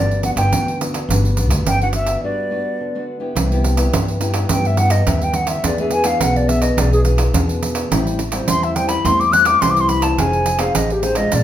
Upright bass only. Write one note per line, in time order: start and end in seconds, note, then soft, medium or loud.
0.00 0.32 G1 medium
0.36 0.49 G1 medium
0.52 1.01 D2 medium
1.09 1.49 G1 medium
1.49 1.63 D2 medium
1.66 2.15 G1 medium
3.36 3.85 C2 medium
3.93 4.42 G2 medium
4.49 4.98 G2 medium
5.07 5.55 D#2 medium
5.63 6.12 E2 medium
6.20 6.69 B1 medium
6.77 7.26 B1 loud
7.34 7.83 E2 medium
7.91 8.40 A1 medium
8.48 8.97 E2 medium
9.05 9.53 E2 loud
9.62 10.11 C2 medium
10.18 10.67 F1 medium
10.75 11.24 A1 medium
11.32 11.44 A#1 loud